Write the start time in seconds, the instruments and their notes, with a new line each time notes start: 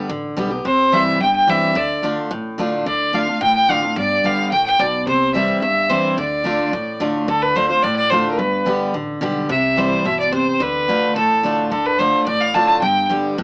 0.09 upright bass A1, steel-string acoustic guitar D3
0.36 upright bass B1, steel-string acoustic guitar D3 G3 B3 G4
0.50 steel-string acoustic guitar B3 G4
0.65 upright bass C2, steel-string acoustic guitar C3, fiddle C5
0.92 steel-string acoustic guitar E3 G3 C4 E4, fiddle E5
1.20 upright bass G1, steel-string acoustic guitar G2, fiddle G5
1.36 fiddle G5
1.47 steel-string acoustic guitar E3 G3 C4 E4, fiddle E5
1.75 upright bass D2, steel-string acoustic guitar D3, fiddle D5
2.03 steel-string acoustic guitar D3 A3 D4 F4
2.31 upright bass A1, steel-string acoustic guitar A2
2.58 steel-string acoustic guitar D3 A3 D4 F4
2.86 upright bass D2, steel-string acoustic guitar D3, fiddle D5
3.13 steel-string acoustic guitar D3 A3 D4 F4, fiddle F5
3.27 steel-string acoustic guitar D4 F4
3.41 upright bass A1, steel-string acoustic guitar A2, fiddle G5
3.56 fiddle G5
3.69 steel-string acoustic guitar D3 A3 D4 F4, fiddle F5
3.82 steel-string acoustic guitar D4 F4
3.96 upright bass G1, steel-string acoustic guitar G2, fiddle D5
4.24 upright bass G1, steel-string acoustic guitar D3 G3 B3 G4, fiddle F5
4.52 upright bass A1, steel-string acoustic guitar A2, fiddle G5
4.66 fiddle G5
4.79 upright bass B1, steel-string acoustic guitar B2, fiddle D5
5.07 upright bass C2, steel-string acoustic guitar C3, fiddle C5
5.34 steel-string acoustic guitar E3 G3 C4 E4, fiddle E5
5.62 upright bass G1, steel-string acoustic guitar G2, fiddle E5
5.89 steel-string acoustic guitar E3 G3 C4 E4, fiddle C5
6.18 upright bass D2, steel-string acoustic guitar D3, fiddle D5
6.44 steel-string acoustic guitar D3 A3 D4 F4
6.73 upright bass A1, steel-string acoustic guitar A2
7.00 steel-string acoustic guitar D3 A3 D4 F4
7.28 upright bass D2, steel-string acoustic guitar D3, fiddle A4
7.42 fiddle B4
7.55 steel-string acoustic guitar D3 A3 D4 F4, fiddle C5
7.69 steel-string acoustic guitar D4 F4, fiddle C5
7.82 upright bass A1, steel-string acoustic guitar A2, fiddle D5
7.96 fiddle D5
8.10 steel-string acoustic guitar D3 A3 D4 F4, fiddle C5
8.31 fiddle A#4
8.37 upright bass G1, steel-string acoustic guitar G2, fiddle B4
8.65 steel-string acoustic guitar D3 G3 B3 G4
8.94 upright bass A1, steel-string acoustic guitar D3
9.21 upright bass B1, steel-string acoustic guitar D3 G3 B3 G4
9.49 upright bass C2, steel-string acoustic guitar C3, fiddle E5
9.76 steel-string acoustic guitar E3 G3 C4 E4, fiddle C5
10.05 upright bass G1, steel-string acoustic guitar B2, fiddle E5
10.20 fiddle D5
10.33 steel-string acoustic guitar C3, fiddle C5
10.60 upright bass D2, steel-string acoustic guitar D3, fiddle B4
10.88 steel-string acoustic guitar D3 A3 D4 F4
11.16 upright bass A1, steel-string acoustic guitar A2, fiddle A4
11.43 steel-string acoustic guitar D3 A3 D4 F4
11.71 upright bass D2, steel-string acoustic guitar D3, fiddle A4
11.86 fiddle B4
11.99 steel-string acoustic guitar D3 A3 D4 F4, fiddle C5
12.27 upright bass A1, steel-string acoustic guitar A2, fiddle D5
12.41 fiddle F5
12.54 steel-string acoustic guitar D3 A3 D4 F4, fiddle A5
12.67 fiddle A5
12.82 upright bass G1, steel-string acoustic guitar G2, fiddle G5
13.09 steel-string acoustic guitar D3 G3 B3 G4
13.38 upright bass D2, steel-string acoustic guitar A2